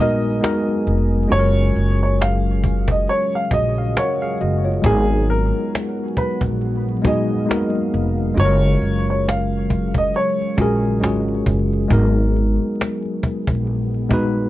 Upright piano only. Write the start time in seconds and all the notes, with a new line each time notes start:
0.00 D#5
1.32 C#5
2.03 C#5
2.21 F5
2.91 D#5
3.09 C#5
3.35 F5
3.53 D#5
3.98 C#5
4.86 G#4
5.30 A#4
6.18 B4
7.07 D#5
8.40 C#5
9.10 C#5
9.28 F5
9.98 D#5
10.16 C#5
10.61 G#4